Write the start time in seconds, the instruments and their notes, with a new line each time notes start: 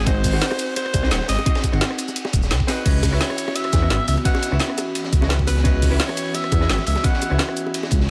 0.06 detuned saw bass G#1, hollow-body jazz guitar C4 D#4 F#4 G#4 D#5, alto saxophone C5, kick, closed hi-hat, ride, high bongo
0.24 kick, closed hi-hat, open hi-hat, shaker
0.32 detuned saw bass G#1, hollow-body jazz guitar C4 D#4 F#4 G#4 F#5, cross-stick, high bongo
0.41 snare, closed hi-hat, ride
0.51 cross-stick, high bongo
0.59 closed hi-hat, ride, shaker
0.76 alto saxophone C5, closed hi-hat, ride, high bongo
0.86 cross-stick, ride
0.93 detuned saw bass C2, kick, closed hi-hat, ride, high bongo, shaker
1.03 hollow-body jazz guitar C4 D#4 F#4 G#4 D#5, cross-stick, snare
1.11 detuned saw bass D#1, hollow-body jazz guitar C4 D#4 F#4 G#4 F#5, snare, closed hi-hat, ride
1.21 snare, high bongo
1.28 detuned saw bass G#1, alto saxophone D#5, snare, open hi-hat, ride, shaker
1.39 high bongo
1.46 hollow-body jazz guitar C4 D#4 F#4 G#4 D#5, kick, closed hi-hat, ride
1.55 snare, ride
1.64 kick, closed hi-hat, high bongo, shaker
1.72 detuned saw bass G#1, hollow-body jazz guitar C4 D#4 F#4 G#4 F#5, cross-stick, ride
1.81 snare, closed hi-hat, ride, high bongo
1.91 cross-stick
1.98 closed hi-hat, ride, shaker
2.08 high bongo, shaker
2.16 closed hi-hat, ride
2.25 snare, high bongo
2.33 detuned saw bass D#1, kick, closed hi-hat, ride, shaker
2.43 snare, shaker
2.51 detuned saw bass C2, snare, closed hi-hat, ride, high bongo
2.60 kick
2.67 hollow-body jazz guitar C4 D#4 F#4 G#4 D#5, alto saxophone B4, snare, open hi-hat, ride, high bongo, shaker
2.85 detuned saw bass C#2, ambient pad E3 B3 F#4, hollow-body jazz guitar C#4 E4 F#4 B4 D#5, kick, closed hi-hat, ride, crash, high bongo
3.03 kick, closed hi-hat, open hi-hat, high bongo, shaker
3.11 detuned saw bass C#2, hollow-body jazz guitar C#4 E4 F#4 B4 E5, cross-stick
3.20 alto saxophone C#5, snare, closed hi-hat, ride
3.30 cross-stick, high bongo
3.38 closed hi-hat, ride, shaker
3.48 high bongo
3.56 alto saxophone E5, closed hi-hat, ride
3.64 cross-stick, ride
3.73 detuned saw bass E2, kick, snare, closed hi-hat, ride, high bongo, shaker
3.81 hollow-body jazz guitar C#4 E4 F#4 B4 D#5, cross-stick
3.89 detuned saw bass G#1, hollow-body jazz guitar C#4 E4 F#4 B4 E5, snare, closed hi-hat, ride, high bongo
4.08 detuned saw bass C#2, alto saxophone E5, open hi-hat, ride, shaker
4.17 ride, high bongo
4.25 hollow-body jazz guitar C#4 E4 F#4 B4 D#5, alto saxophone F#5, kick, closed hi-hat, ride
4.35 snare, high bongo
4.42 closed hi-hat, ride, shaker
4.51 detuned saw bass C#2, hollow-body jazz guitar C#4 E4 F#4 B4 E5, cross-stick
4.59 snare, closed hi-hat, ride, high bongo
4.70 cross-stick
4.78 closed hi-hat, ride, high bongo, shaker
4.95 closed hi-hat, ride
5.04 snare, high bongo
5.13 detuned saw bass C#2, kick, closed hi-hat, ride, shaker
5.21 hollow-body jazz guitar C#4 E4 F#4 B4 D#5, snare, high bongo
5.29 detuned saw bass C#2, hollow-body jazz guitar C#4 E4 F#4 B4 E5, snare, closed hi-hat, ride
5.39 kick
5.47 alto saxophone B4, snare, open hi-hat, ride, high bongo, shaker
5.57 snare
5.64 detuned saw bass C#2, hollow-body jazz guitar C#4 E4 F#4 B4 D#5, kick, closed hi-hat, ride, high bongo
5.82 kick, closed hi-hat, open hi-hat, shaker
5.90 detuned saw bass C#2, hollow-body jazz guitar C#4 E4 F#4 B4 E5, cross-stick, high bongo
6.00 alto saxophone C#5, snare, closed hi-hat, ride
6.09 cross-stick, high bongo
6.17 closed hi-hat, ride, shaker
6.34 alto saxophone E5, closed hi-hat, ride, high bongo
6.44 cross-stick, ride
6.52 detuned saw bass E2, kick, closed hi-hat, ride, high bongo, shaker
6.60 hollow-body jazz guitar C#4 E4 F#4 B4 D#5, cross-stick, snare
6.69 detuned saw bass G#1, hollow-body jazz guitar C#4 E4 F#4 B4 E5, snare, closed hi-hat, ride
6.79 snare, high bongo
6.86 detuned saw bass C#2, alto saxophone E5, open hi-hat, ride, shaker
6.95 snare, high bongo
7.03 hollow-body jazz guitar C#4 E4 F#4 B4 D#5, alto saxophone F#5, kick, closed hi-hat, ride
7.13 snare
7.22 closed hi-hat, ride, high bongo, shaker
7.30 detuned saw bass C#2, hollow-body jazz guitar C#4 E4 F#4 B4 E5, cross-stick
7.39 snare, closed hi-hat, ride, high bongo
7.49 cross-stick
7.57 closed hi-hat, shaker
7.66 high bongo
7.74 closed hi-hat, ride
7.83 snare, high bongo
7.91 detuned saw bass C#2, kick, closed hi-hat, ride, shaker
8.00 snare